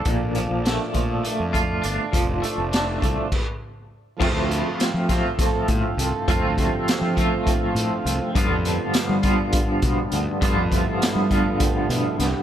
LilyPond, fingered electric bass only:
\new Staff \with { instrumentName = "Fingered electric bass" } { \clef bass \time 7/8 \key f \lydian \tempo 4 = 101 bes,,8. bes,,8 r16 bes,8 r16 f,8. g,,16 r16 | f,,8 r16 f,,8. c,16 r4. r16 | f,16 d,8 r8 f8 r8. a,16 r16 c,16 r16 | f,16 d,8 r8 f8 r8. a,16 r16 c,16 r16 |
g,16 f,8 r8 g8 r8. b,16 r16 d,16 r16 | g,16 f,8 r8 g8 r8. b,16 r16 c,16 r16 | }